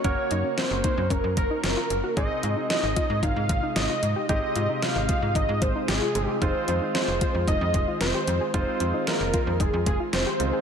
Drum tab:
HH |xxxxxxxx|xxxxxxxx|xxxxxxxx|xxxxxxxx|
SD |--o---o-|--o---o-|--o---o-|--o---o-|
BD |o--ooo--|o--ooo--|o--ooo--|o--ooo--|

HH |xxxxxxxx|
SD |--o---o-|
BD |o--ooo--|